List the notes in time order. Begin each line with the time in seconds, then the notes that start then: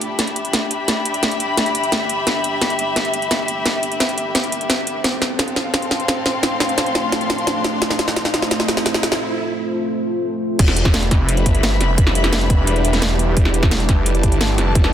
Already playing: G3 D4 E4 G4 A4 B4 E5 B5, riser
0.01 closed hi-hat
0.19 snare, closed hi-hat
0.27 closed hi-hat
0.36 closed hi-hat
0.45 closed hi-hat
0.53 snare, closed hi-hat
0.71 closed hi-hat
0.88 snare, closed hi-hat
1.05 closed hi-hat
1.14 closed hi-hat
1.23 snare, closed hi-hat
1.31 closed hi-hat
1.40 closed hi-hat
1.57 snare, closed hi-hat
1.66 closed hi-hat
1.75 closed hi-hat
1.84 closed hi-hat
1.92 snare, closed hi-hat
2.10 closed hi-hat
2.27 A4, snare, closed hi-hat
2.44 closed hi-hat
2.62 snare, closed hi-hat
2.70 closed hi-hat
2.79 closed hi-hat
2.96 snare, closed hi-hat
3.05 closed hi-hat
3.14 closed hi-hat
3.22 closed hi-hat
3.31 snare, closed hi-hat
3.48 closed hi-hat
3.66 snare, closed hi-hat
3.83 closed hi-hat
3.92 closed hi-hat
4.00 snare, closed hi-hat
4.09 closed hi-hat
4.18 closed hi-hat
4.35 snare, closed hi-hat
4.44 closed hi-hat
4.52 closed hi-hat
4.61 closed hi-hat
4.70 snare, closed hi-hat
4.87 closed hi-hat
5.04 A3 C4 F4 C5, snare, closed hi-hat
5.12 A4
5.22 snare, closed hi-hat
5.39 snare, closed hi-hat
5.46 F5, closed hi-hat
5.56 snare, closed hi-hat
5.73 C6, snare, closed hi-hat
5.82 closed hi-hat
5.91 snare, closed hi-hat
6.00 closed hi-hat
6.08 snare, closed hi-hat
6.26 snare, closed hi-hat
6.43 snare, closed hi-hat
6.60 snare, closed hi-hat
6.69 closed hi-hat
6.78 snare, closed hi-hat
6.86 closed hi-hat
6.95 snare, closed hi-hat
7.12 snare, closed hi-hat
7.21 closed hi-hat
7.30 snare, closed hi-hat
7.38 closed hi-hat
7.47 snare, closed hi-hat
7.64 snare, closed hi-hat
7.82 snare, closed hi-hat
7.90 snare
7.99 snare, closed hi-hat
8.08 snare
8.16 snare, closed hi-hat
8.25 snare, closed hi-hat
8.34 snare, closed hi-hat
8.42 snare
8.51 snare, closed hi-hat
8.60 snare, closed hi-hat
8.68 snare, closed hi-hat
8.77 snare, closed hi-hat
8.86 snare, closed hi-hat
8.94 snare
9.03 snare, closed hi-hat
9.12 snare
10.59 E1 G3 D4 E4 B4, kick, closed hi-hat, crash
10.66 E5, snare
10.71 G4
10.77 closed hi-hat
10.85 kick, snare
10.94 B5, snare, closed hi-hat
11.03 closed hi-hat
11.11 F1, kick, snare, closed hi-hat
11.29 closed hi-hat
11.37 closed hi-hat
11.46 G1, kick, closed hi-hat
11.55 closed hi-hat
11.63 snare, closed hi-hat
11.81 F1, snare, closed hi-hat
11.98 kick, closed hi-hat
12.07 snare
12.15 closed hi-hat
12.24 snare, closed hi-hat
12.33 snare, closed hi-hat
12.41 closed hi-hat
12.50 kick, closed hi-hat
12.67 E1, closed hi-hat
12.76 closed hi-hat
12.85 closed hi-hat
12.93 snare, closed hi-hat
13.02 snare, closed hi-hat
13.19 closed hi-hat
13.37 E1, kick, closed hi-hat
13.45 snare
13.54 closed hi-hat
13.63 A5, kick, snare
13.71 snare, closed hi-hat
13.80 closed hi-hat
13.89 F1, kick, snare, closed hi-hat
14.06 D5, closed hi-hat
14.15 closed hi-hat
14.23 G1, kick, closed hi-hat
14.32 closed hi-hat
14.41 snare, closed hi-hat
14.58 F1, snare, closed hi-hat
14.75 kick, closed hi-hat
14.84 snare